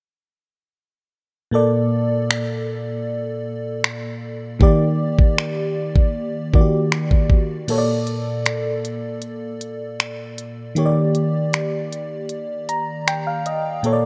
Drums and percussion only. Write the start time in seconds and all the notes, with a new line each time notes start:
2.31 finger snap
3.84 finger snap
4.61 kick
5.19 kick
5.38 finger snap
5.96 kick
6.54 kick
6.92 finger snap
7.11 kick
7.30 kick
7.68 closed hi-hat, crash
8.07 closed hi-hat
8.46 finger snap, closed hi-hat
8.85 closed hi-hat
9.22 closed hi-hat
9.61 closed hi-hat
10.00 finger snap, closed hi-hat
10.38 closed hi-hat
10.76 closed hi-hat
11.15 closed hi-hat
11.53 finger snap, closed hi-hat
11.93 closed hi-hat
12.29 closed hi-hat
12.69 closed hi-hat
13.08 finger snap, closed hi-hat
13.46 closed hi-hat
13.84 closed hi-hat